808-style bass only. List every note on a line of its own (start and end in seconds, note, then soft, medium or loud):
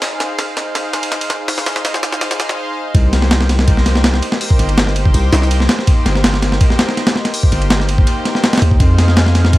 2.95 4.21 C2 loud
4.59 5.13 G1 medium
5.14 5.31 C2 loud
5.33 5.68 C2 medium
6.06 6.59 G1 medium
7.52 8.06 G1 medium
8.62 8.78 D#2 loud
8.80 9.58 F2 loud